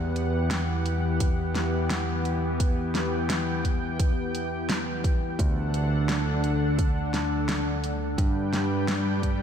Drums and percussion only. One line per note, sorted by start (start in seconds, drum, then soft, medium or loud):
0.16 closed hi-hat medium
0.51 snare loud
0.51 closed hi-hat medium
0.86 closed hi-hat medium
1.20 kick loud
1.20 closed hi-hat loud
1.55 snare medium
1.55 closed hi-hat medium
1.90 snare loud
1.90 closed hi-hat medium
2.25 closed hi-hat medium
2.60 kick loud
2.60 closed hi-hat medium
2.95 snare medium
2.95 closed hi-hat medium
3.30 snare loud
3.30 closed hi-hat medium
3.65 kick medium
3.65 closed hi-hat medium
3.99 kick loud
3.99 closed hi-hat medium
4.35 closed hi-hat medium
4.69 snare loud
4.69 closed hi-hat medium
5.04 kick loud
5.04 closed hi-hat medium
5.39 kick loud
5.39 closed hi-hat medium
5.74 closed hi-hat medium
6.09 snare loud
6.09 closed hi-hat medium
6.44 closed hi-hat medium
6.79 kick loud
6.79 closed hi-hat medium
7.14 snare medium
7.14 closed hi-hat medium
7.49 snare loud
7.49 closed hi-hat medium
7.84 closed hi-hat medium
8.18 kick loud
8.18 closed hi-hat medium
8.53 snare medium
8.53 closed hi-hat medium
8.88 snare loud
8.88 closed hi-hat medium
9.23 kick medium
9.23 closed hi-hat medium